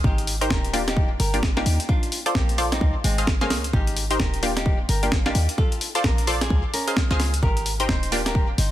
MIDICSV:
0, 0, Header, 1, 5, 480
1, 0, Start_track
1, 0, Key_signature, -4, "major"
1, 0, Tempo, 461538
1, 45, Time_signature, 4, 2, 24, 8
1, 9063, End_track
2, 0, Start_track
2, 0, Title_t, "Nylon-string guitar"
2, 0, Program_c, 0, 24
2, 42, Note_on_c, 0, 63, 74
2, 46, Note_on_c, 0, 67, 97
2, 356, Note_off_c, 0, 63, 0
2, 356, Note_off_c, 0, 67, 0
2, 523, Note_on_c, 0, 67, 73
2, 524, Note_on_c, 0, 70, 94
2, 752, Note_off_c, 0, 67, 0
2, 752, Note_off_c, 0, 70, 0
2, 909, Note_on_c, 0, 63, 70
2, 912, Note_on_c, 0, 67, 88
2, 1131, Note_off_c, 0, 63, 0
2, 1132, Note_off_c, 0, 67, 0
2, 1244, Note_on_c, 0, 67, 72
2, 1245, Note_on_c, 0, 70, 84
2, 1472, Note_off_c, 0, 67, 0
2, 1472, Note_off_c, 0, 70, 0
2, 1630, Note_on_c, 0, 63, 76
2, 1633, Note_on_c, 0, 67, 99
2, 1852, Note_off_c, 0, 63, 0
2, 1852, Note_off_c, 0, 67, 0
2, 1965, Note_on_c, 0, 62, 75
2, 1967, Note_on_c, 0, 65, 100
2, 2277, Note_off_c, 0, 62, 0
2, 2277, Note_off_c, 0, 65, 0
2, 2444, Note_on_c, 0, 58, 75
2, 2447, Note_on_c, 0, 67, 91
2, 2672, Note_off_c, 0, 58, 0
2, 2672, Note_off_c, 0, 67, 0
2, 2830, Note_on_c, 0, 60, 72
2, 2835, Note_on_c, 0, 63, 89
2, 3052, Note_off_c, 0, 60, 0
2, 3053, Note_off_c, 0, 63, 0
2, 3164, Note_on_c, 0, 56, 73
2, 3167, Note_on_c, 0, 60, 88
2, 3393, Note_off_c, 0, 56, 0
2, 3393, Note_off_c, 0, 60, 0
2, 3549, Note_on_c, 0, 49, 77
2, 3553, Note_on_c, 0, 58, 100
2, 3771, Note_off_c, 0, 49, 0
2, 3772, Note_off_c, 0, 58, 0
2, 3883, Note_on_c, 0, 63, 73
2, 3886, Note_on_c, 0, 67, 95
2, 4196, Note_off_c, 0, 63, 0
2, 4196, Note_off_c, 0, 67, 0
2, 4363, Note_on_c, 0, 67, 74
2, 4365, Note_on_c, 0, 70, 91
2, 4592, Note_off_c, 0, 67, 0
2, 4592, Note_off_c, 0, 70, 0
2, 4749, Note_on_c, 0, 63, 73
2, 4751, Note_on_c, 0, 67, 90
2, 4971, Note_off_c, 0, 63, 0
2, 4971, Note_off_c, 0, 67, 0
2, 5084, Note_on_c, 0, 67, 74
2, 5087, Note_on_c, 0, 70, 93
2, 5312, Note_off_c, 0, 67, 0
2, 5312, Note_off_c, 0, 70, 0
2, 5471, Note_on_c, 0, 63, 76
2, 5474, Note_on_c, 0, 67, 98
2, 5692, Note_off_c, 0, 63, 0
2, 5692, Note_off_c, 0, 67, 0
2, 5804, Note_on_c, 0, 65, 77
2, 5807, Note_on_c, 0, 69, 96
2, 6116, Note_off_c, 0, 69, 0
2, 6117, Note_off_c, 0, 65, 0
2, 6282, Note_on_c, 0, 62, 73
2, 6286, Note_on_c, 0, 70, 94
2, 6512, Note_off_c, 0, 62, 0
2, 6512, Note_off_c, 0, 70, 0
2, 6667, Note_on_c, 0, 65, 74
2, 6670, Note_on_c, 0, 68, 87
2, 6890, Note_off_c, 0, 68, 0
2, 6891, Note_off_c, 0, 65, 0
2, 7003, Note_on_c, 0, 61, 70
2, 7005, Note_on_c, 0, 70, 87
2, 7232, Note_off_c, 0, 61, 0
2, 7232, Note_off_c, 0, 70, 0
2, 7388, Note_on_c, 0, 65, 78
2, 7394, Note_on_c, 0, 68, 93
2, 7611, Note_off_c, 0, 65, 0
2, 7611, Note_off_c, 0, 68, 0
2, 7723, Note_on_c, 0, 67, 74
2, 7727, Note_on_c, 0, 70, 94
2, 8036, Note_off_c, 0, 70, 0
2, 8037, Note_off_c, 0, 67, 0
2, 8202, Note_on_c, 0, 63, 77
2, 8203, Note_on_c, 0, 72, 97
2, 8431, Note_off_c, 0, 72, 0
2, 8432, Note_off_c, 0, 63, 0
2, 8587, Note_on_c, 0, 67, 75
2, 8592, Note_on_c, 0, 70, 87
2, 8811, Note_off_c, 0, 67, 0
2, 8811, Note_off_c, 0, 70, 0
2, 8923, Note_on_c, 0, 63, 74
2, 8926, Note_on_c, 0, 72, 91
2, 9063, Note_off_c, 0, 63, 0
2, 9063, Note_off_c, 0, 72, 0
2, 9063, End_track
3, 0, Start_track
3, 0, Title_t, "Synth stab"
3, 0, Program_c, 1, 62
3, 430, Note_on_c, 1, 63, 85
3, 430, Note_on_c, 1, 67, 79
3, 430, Note_on_c, 1, 70, 80
3, 430, Note_on_c, 1, 72, 95
3, 544, Note_off_c, 1, 63, 0
3, 544, Note_off_c, 1, 67, 0
3, 544, Note_off_c, 1, 70, 0
3, 544, Note_off_c, 1, 72, 0
3, 763, Note_on_c, 1, 58, 96
3, 763, Note_on_c, 1, 62, 88
3, 763, Note_on_c, 1, 65, 90
3, 763, Note_on_c, 1, 67, 110
3, 867, Note_off_c, 1, 58, 0
3, 867, Note_off_c, 1, 62, 0
3, 867, Note_off_c, 1, 65, 0
3, 867, Note_off_c, 1, 67, 0
3, 1390, Note_on_c, 1, 58, 77
3, 1390, Note_on_c, 1, 62, 71
3, 1390, Note_on_c, 1, 65, 72
3, 1390, Note_on_c, 1, 67, 84
3, 1457, Note_off_c, 1, 58, 0
3, 1457, Note_off_c, 1, 62, 0
3, 1457, Note_off_c, 1, 65, 0
3, 1457, Note_off_c, 1, 67, 0
3, 1629, Note_on_c, 1, 62, 85
3, 1630, Note_on_c, 1, 58, 97
3, 1630, Note_on_c, 1, 65, 88
3, 1630, Note_on_c, 1, 67, 101
3, 1697, Note_off_c, 1, 58, 0
3, 1697, Note_off_c, 1, 62, 0
3, 1697, Note_off_c, 1, 65, 0
3, 1697, Note_off_c, 1, 67, 0
3, 2350, Note_on_c, 1, 65, 83
3, 2350, Note_on_c, 1, 69, 81
3, 2350, Note_on_c, 1, 74, 92
3, 2351, Note_on_c, 1, 72, 81
3, 2464, Note_off_c, 1, 65, 0
3, 2464, Note_off_c, 1, 69, 0
3, 2464, Note_off_c, 1, 72, 0
3, 2464, Note_off_c, 1, 74, 0
3, 2685, Note_on_c, 1, 65, 96
3, 2685, Note_on_c, 1, 69, 87
3, 2685, Note_on_c, 1, 72, 92
3, 2685, Note_on_c, 1, 74, 105
3, 2788, Note_off_c, 1, 65, 0
3, 2788, Note_off_c, 1, 69, 0
3, 2788, Note_off_c, 1, 72, 0
3, 2788, Note_off_c, 1, 74, 0
3, 3310, Note_on_c, 1, 68, 77
3, 3310, Note_on_c, 1, 72, 68
3, 3310, Note_on_c, 1, 75, 68
3, 3310, Note_on_c, 1, 77, 82
3, 3377, Note_off_c, 1, 68, 0
3, 3377, Note_off_c, 1, 72, 0
3, 3377, Note_off_c, 1, 75, 0
3, 3377, Note_off_c, 1, 77, 0
3, 3550, Note_on_c, 1, 68, 94
3, 3550, Note_on_c, 1, 72, 91
3, 3550, Note_on_c, 1, 75, 82
3, 3550, Note_on_c, 1, 77, 107
3, 3617, Note_off_c, 1, 68, 0
3, 3617, Note_off_c, 1, 72, 0
3, 3617, Note_off_c, 1, 75, 0
3, 3617, Note_off_c, 1, 77, 0
3, 4270, Note_on_c, 1, 63, 85
3, 4270, Note_on_c, 1, 67, 81
3, 4270, Note_on_c, 1, 70, 81
3, 4270, Note_on_c, 1, 72, 94
3, 4384, Note_off_c, 1, 63, 0
3, 4384, Note_off_c, 1, 67, 0
3, 4384, Note_off_c, 1, 70, 0
3, 4384, Note_off_c, 1, 72, 0
3, 4604, Note_on_c, 1, 58, 94
3, 4604, Note_on_c, 1, 62, 88
3, 4604, Note_on_c, 1, 67, 104
3, 4605, Note_on_c, 1, 65, 89
3, 4708, Note_off_c, 1, 58, 0
3, 4708, Note_off_c, 1, 62, 0
3, 4708, Note_off_c, 1, 65, 0
3, 4708, Note_off_c, 1, 67, 0
3, 5230, Note_on_c, 1, 58, 77
3, 5230, Note_on_c, 1, 65, 65
3, 5230, Note_on_c, 1, 67, 82
3, 5231, Note_on_c, 1, 62, 69
3, 5297, Note_off_c, 1, 58, 0
3, 5297, Note_off_c, 1, 62, 0
3, 5297, Note_off_c, 1, 65, 0
3, 5297, Note_off_c, 1, 67, 0
3, 5470, Note_on_c, 1, 58, 89
3, 5470, Note_on_c, 1, 62, 91
3, 5470, Note_on_c, 1, 67, 106
3, 5471, Note_on_c, 1, 65, 90
3, 5537, Note_off_c, 1, 58, 0
3, 5537, Note_off_c, 1, 62, 0
3, 5537, Note_off_c, 1, 65, 0
3, 5537, Note_off_c, 1, 67, 0
3, 6190, Note_on_c, 1, 65, 88
3, 6190, Note_on_c, 1, 72, 81
3, 6190, Note_on_c, 1, 74, 94
3, 6191, Note_on_c, 1, 69, 80
3, 6304, Note_off_c, 1, 65, 0
3, 6304, Note_off_c, 1, 69, 0
3, 6304, Note_off_c, 1, 72, 0
3, 6304, Note_off_c, 1, 74, 0
3, 6524, Note_on_c, 1, 65, 92
3, 6524, Note_on_c, 1, 69, 91
3, 6524, Note_on_c, 1, 72, 89
3, 6524, Note_on_c, 1, 74, 112
3, 6628, Note_off_c, 1, 65, 0
3, 6628, Note_off_c, 1, 69, 0
3, 6628, Note_off_c, 1, 72, 0
3, 6628, Note_off_c, 1, 74, 0
3, 7150, Note_on_c, 1, 72, 71
3, 7150, Note_on_c, 1, 75, 68
3, 7150, Note_on_c, 1, 77, 82
3, 7151, Note_on_c, 1, 68, 71
3, 7217, Note_off_c, 1, 68, 0
3, 7217, Note_off_c, 1, 72, 0
3, 7217, Note_off_c, 1, 75, 0
3, 7217, Note_off_c, 1, 77, 0
3, 7391, Note_on_c, 1, 68, 97
3, 7391, Note_on_c, 1, 72, 88
3, 7391, Note_on_c, 1, 75, 88
3, 7391, Note_on_c, 1, 77, 110
3, 7457, Note_off_c, 1, 72, 0
3, 7458, Note_off_c, 1, 68, 0
3, 7458, Note_off_c, 1, 75, 0
3, 7458, Note_off_c, 1, 77, 0
3, 8110, Note_on_c, 1, 63, 84
3, 8110, Note_on_c, 1, 72, 95
3, 8111, Note_on_c, 1, 67, 84
3, 8111, Note_on_c, 1, 70, 78
3, 8224, Note_off_c, 1, 63, 0
3, 8224, Note_off_c, 1, 67, 0
3, 8224, Note_off_c, 1, 70, 0
3, 8224, Note_off_c, 1, 72, 0
3, 8445, Note_on_c, 1, 58, 93
3, 8445, Note_on_c, 1, 62, 88
3, 8445, Note_on_c, 1, 65, 85
3, 8445, Note_on_c, 1, 67, 105
3, 8548, Note_off_c, 1, 58, 0
3, 8548, Note_off_c, 1, 62, 0
3, 8548, Note_off_c, 1, 65, 0
3, 8548, Note_off_c, 1, 67, 0
3, 9063, End_track
4, 0, Start_track
4, 0, Title_t, "808-style bass"
4, 0, Program_c, 2, 38
4, 44, Note_on_c, 2, 32, 99
4, 509, Note_off_c, 2, 32, 0
4, 524, Note_on_c, 2, 27, 88
4, 1229, Note_off_c, 2, 27, 0
4, 1245, Note_on_c, 2, 31, 100
4, 1709, Note_off_c, 2, 31, 0
4, 1724, Note_on_c, 2, 39, 91
4, 1855, Note_off_c, 2, 39, 0
4, 2444, Note_on_c, 2, 34, 86
4, 2909, Note_off_c, 2, 34, 0
4, 2924, Note_on_c, 2, 37, 93
4, 3055, Note_off_c, 2, 37, 0
4, 3163, Note_on_c, 2, 32, 85
4, 3643, Note_on_c, 2, 37, 91
4, 3659, Note_off_c, 2, 32, 0
4, 3865, Note_off_c, 2, 37, 0
4, 3883, Note_on_c, 2, 32, 103
4, 4348, Note_off_c, 2, 32, 0
4, 4364, Note_on_c, 2, 27, 94
4, 5069, Note_off_c, 2, 27, 0
4, 5084, Note_on_c, 2, 31, 99
4, 5549, Note_off_c, 2, 31, 0
4, 5563, Note_on_c, 2, 39, 93
4, 5695, Note_off_c, 2, 39, 0
4, 6284, Note_on_c, 2, 34, 89
4, 6749, Note_off_c, 2, 34, 0
4, 6763, Note_on_c, 2, 37, 97
4, 6895, Note_off_c, 2, 37, 0
4, 7390, Note_on_c, 2, 37, 90
4, 7709, Note_off_c, 2, 37, 0
4, 7724, Note_on_c, 2, 32, 99
4, 8189, Note_off_c, 2, 32, 0
4, 8204, Note_on_c, 2, 27, 88
4, 8909, Note_off_c, 2, 27, 0
4, 8923, Note_on_c, 2, 31, 102
4, 9063, Note_off_c, 2, 31, 0
4, 9063, End_track
5, 0, Start_track
5, 0, Title_t, "Drums"
5, 44, Note_on_c, 9, 36, 126
5, 148, Note_off_c, 9, 36, 0
5, 191, Note_on_c, 9, 42, 51
5, 285, Note_on_c, 9, 46, 99
5, 295, Note_off_c, 9, 42, 0
5, 389, Note_off_c, 9, 46, 0
5, 432, Note_on_c, 9, 42, 65
5, 524, Note_on_c, 9, 36, 121
5, 526, Note_on_c, 9, 38, 127
5, 536, Note_off_c, 9, 42, 0
5, 628, Note_off_c, 9, 36, 0
5, 630, Note_off_c, 9, 38, 0
5, 671, Note_on_c, 9, 42, 50
5, 765, Note_on_c, 9, 46, 94
5, 775, Note_off_c, 9, 42, 0
5, 869, Note_off_c, 9, 46, 0
5, 912, Note_on_c, 9, 40, 54
5, 912, Note_on_c, 9, 42, 61
5, 1004, Note_on_c, 9, 36, 121
5, 1016, Note_off_c, 9, 40, 0
5, 1016, Note_off_c, 9, 42, 0
5, 1108, Note_off_c, 9, 36, 0
5, 1245, Note_on_c, 9, 46, 104
5, 1349, Note_off_c, 9, 46, 0
5, 1391, Note_on_c, 9, 42, 60
5, 1484, Note_on_c, 9, 36, 127
5, 1486, Note_on_c, 9, 38, 124
5, 1495, Note_off_c, 9, 42, 0
5, 1588, Note_off_c, 9, 36, 0
5, 1590, Note_off_c, 9, 38, 0
5, 1632, Note_on_c, 9, 40, 53
5, 1726, Note_on_c, 9, 46, 95
5, 1736, Note_off_c, 9, 40, 0
5, 1830, Note_off_c, 9, 46, 0
5, 1871, Note_on_c, 9, 42, 65
5, 1964, Note_on_c, 9, 36, 127
5, 1975, Note_off_c, 9, 42, 0
5, 2068, Note_off_c, 9, 36, 0
5, 2111, Note_on_c, 9, 42, 50
5, 2205, Note_on_c, 9, 46, 102
5, 2215, Note_off_c, 9, 42, 0
5, 2309, Note_off_c, 9, 46, 0
5, 2351, Note_on_c, 9, 42, 65
5, 2444, Note_on_c, 9, 36, 124
5, 2445, Note_on_c, 9, 38, 119
5, 2455, Note_off_c, 9, 42, 0
5, 2548, Note_off_c, 9, 36, 0
5, 2549, Note_off_c, 9, 38, 0
5, 2591, Note_on_c, 9, 42, 51
5, 2684, Note_on_c, 9, 46, 92
5, 2695, Note_off_c, 9, 42, 0
5, 2788, Note_off_c, 9, 46, 0
5, 2830, Note_on_c, 9, 40, 49
5, 2830, Note_on_c, 9, 42, 66
5, 2924, Note_on_c, 9, 36, 120
5, 2934, Note_off_c, 9, 40, 0
5, 2934, Note_off_c, 9, 42, 0
5, 3028, Note_off_c, 9, 36, 0
5, 3164, Note_on_c, 9, 46, 100
5, 3268, Note_off_c, 9, 46, 0
5, 3310, Note_on_c, 9, 42, 61
5, 3404, Note_on_c, 9, 36, 119
5, 3404, Note_on_c, 9, 38, 122
5, 3414, Note_off_c, 9, 42, 0
5, 3508, Note_off_c, 9, 36, 0
5, 3508, Note_off_c, 9, 38, 0
5, 3549, Note_on_c, 9, 40, 53
5, 3644, Note_on_c, 9, 38, 67
5, 3644, Note_on_c, 9, 46, 97
5, 3653, Note_off_c, 9, 40, 0
5, 3748, Note_off_c, 9, 38, 0
5, 3748, Note_off_c, 9, 46, 0
5, 3789, Note_on_c, 9, 42, 64
5, 3884, Note_on_c, 9, 36, 119
5, 3893, Note_off_c, 9, 42, 0
5, 3988, Note_off_c, 9, 36, 0
5, 4029, Note_on_c, 9, 42, 55
5, 4124, Note_on_c, 9, 46, 104
5, 4133, Note_off_c, 9, 42, 0
5, 4228, Note_off_c, 9, 46, 0
5, 4270, Note_on_c, 9, 42, 69
5, 4364, Note_on_c, 9, 36, 113
5, 4364, Note_on_c, 9, 38, 122
5, 4374, Note_off_c, 9, 42, 0
5, 4468, Note_off_c, 9, 36, 0
5, 4468, Note_off_c, 9, 38, 0
5, 4510, Note_on_c, 9, 42, 53
5, 4604, Note_on_c, 9, 46, 96
5, 4614, Note_off_c, 9, 42, 0
5, 4708, Note_off_c, 9, 46, 0
5, 4749, Note_on_c, 9, 40, 50
5, 4749, Note_on_c, 9, 42, 67
5, 4844, Note_on_c, 9, 36, 122
5, 4853, Note_off_c, 9, 40, 0
5, 4853, Note_off_c, 9, 42, 0
5, 4948, Note_off_c, 9, 36, 0
5, 5084, Note_on_c, 9, 46, 107
5, 5188, Note_off_c, 9, 46, 0
5, 5229, Note_on_c, 9, 42, 63
5, 5323, Note_on_c, 9, 38, 118
5, 5324, Note_on_c, 9, 36, 116
5, 5333, Note_off_c, 9, 42, 0
5, 5427, Note_off_c, 9, 38, 0
5, 5428, Note_off_c, 9, 36, 0
5, 5469, Note_on_c, 9, 40, 54
5, 5563, Note_on_c, 9, 46, 94
5, 5573, Note_off_c, 9, 40, 0
5, 5667, Note_off_c, 9, 46, 0
5, 5709, Note_on_c, 9, 42, 68
5, 5804, Note_on_c, 9, 36, 127
5, 5813, Note_off_c, 9, 42, 0
5, 5908, Note_off_c, 9, 36, 0
5, 5950, Note_on_c, 9, 42, 53
5, 6044, Note_on_c, 9, 46, 113
5, 6054, Note_off_c, 9, 42, 0
5, 6148, Note_off_c, 9, 46, 0
5, 6189, Note_on_c, 9, 42, 67
5, 6283, Note_on_c, 9, 38, 119
5, 6284, Note_on_c, 9, 36, 113
5, 6293, Note_off_c, 9, 42, 0
5, 6387, Note_off_c, 9, 38, 0
5, 6388, Note_off_c, 9, 36, 0
5, 6430, Note_on_c, 9, 42, 56
5, 6524, Note_on_c, 9, 46, 98
5, 6534, Note_off_c, 9, 42, 0
5, 6628, Note_off_c, 9, 46, 0
5, 6670, Note_on_c, 9, 40, 53
5, 6670, Note_on_c, 9, 42, 70
5, 6764, Note_on_c, 9, 36, 113
5, 6774, Note_off_c, 9, 40, 0
5, 6774, Note_off_c, 9, 42, 0
5, 6868, Note_off_c, 9, 36, 0
5, 7005, Note_on_c, 9, 46, 110
5, 7109, Note_off_c, 9, 46, 0
5, 7150, Note_on_c, 9, 42, 70
5, 7244, Note_on_c, 9, 36, 110
5, 7245, Note_on_c, 9, 38, 112
5, 7254, Note_off_c, 9, 42, 0
5, 7348, Note_off_c, 9, 36, 0
5, 7349, Note_off_c, 9, 38, 0
5, 7391, Note_on_c, 9, 40, 53
5, 7484, Note_on_c, 9, 38, 60
5, 7484, Note_on_c, 9, 46, 95
5, 7495, Note_off_c, 9, 40, 0
5, 7588, Note_off_c, 9, 38, 0
5, 7588, Note_off_c, 9, 46, 0
5, 7631, Note_on_c, 9, 42, 72
5, 7724, Note_on_c, 9, 36, 119
5, 7735, Note_off_c, 9, 42, 0
5, 7828, Note_off_c, 9, 36, 0
5, 7871, Note_on_c, 9, 42, 55
5, 7965, Note_on_c, 9, 46, 105
5, 7975, Note_off_c, 9, 42, 0
5, 8069, Note_off_c, 9, 46, 0
5, 8110, Note_on_c, 9, 42, 66
5, 8204, Note_on_c, 9, 36, 115
5, 8204, Note_on_c, 9, 38, 111
5, 8214, Note_off_c, 9, 42, 0
5, 8308, Note_off_c, 9, 36, 0
5, 8308, Note_off_c, 9, 38, 0
5, 8351, Note_on_c, 9, 42, 58
5, 8445, Note_on_c, 9, 46, 96
5, 8455, Note_off_c, 9, 42, 0
5, 8549, Note_off_c, 9, 46, 0
5, 8591, Note_on_c, 9, 40, 52
5, 8591, Note_on_c, 9, 42, 70
5, 8684, Note_on_c, 9, 36, 109
5, 8695, Note_off_c, 9, 40, 0
5, 8695, Note_off_c, 9, 42, 0
5, 8788, Note_off_c, 9, 36, 0
5, 8925, Note_on_c, 9, 46, 105
5, 9029, Note_off_c, 9, 46, 0
5, 9063, End_track
0, 0, End_of_file